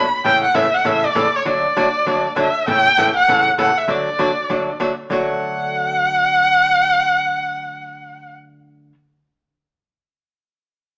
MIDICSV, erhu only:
0, 0, Header, 1, 2, 480
1, 0, Start_track
1, 0, Key_signature, 2, "major"
1, 0, Tempo, 304414
1, 380, Time_signature, 4, 2, 24, 8
1, 17312, End_track
2, 0, Start_track
2, 0, Title_t, "Erhu"
2, 0, Program_c, 0, 110
2, 0, Note_on_c, 0, 83, 102
2, 200, Note_off_c, 0, 83, 0
2, 394, Note_on_c, 0, 79, 104
2, 661, Note_off_c, 0, 79, 0
2, 690, Note_on_c, 0, 78, 93
2, 869, Note_on_c, 0, 76, 95
2, 893, Note_off_c, 0, 78, 0
2, 1169, Note_on_c, 0, 78, 91
2, 1193, Note_off_c, 0, 76, 0
2, 1364, Note_on_c, 0, 76, 91
2, 1388, Note_off_c, 0, 78, 0
2, 1662, Note_on_c, 0, 74, 96
2, 1685, Note_off_c, 0, 76, 0
2, 2140, Note_on_c, 0, 73, 82
2, 2164, Note_off_c, 0, 74, 0
2, 2311, Note_off_c, 0, 73, 0
2, 2338, Note_on_c, 0, 74, 87
2, 3692, Note_off_c, 0, 74, 0
2, 3749, Note_on_c, 0, 76, 86
2, 4188, Note_off_c, 0, 76, 0
2, 4235, Note_on_c, 0, 79, 115
2, 4944, Note_off_c, 0, 79, 0
2, 4989, Note_on_c, 0, 78, 109
2, 5434, Note_off_c, 0, 78, 0
2, 5674, Note_on_c, 0, 78, 86
2, 5953, Note_on_c, 0, 76, 85
2, 5977, Note_off_c, 0, 78, 0
2, 6152, Note_on_c, 0, 74, 87
2, 6176, Note_off_c, 0, 76, 0
2, 7582, Note_off_c, 0, 74, 0
2, 8057, Note_on_c, 0, 78, 101
2, 13096, Note_off_c, 0, 78, 0
2, 17312, End_track
0, 0, End_of_file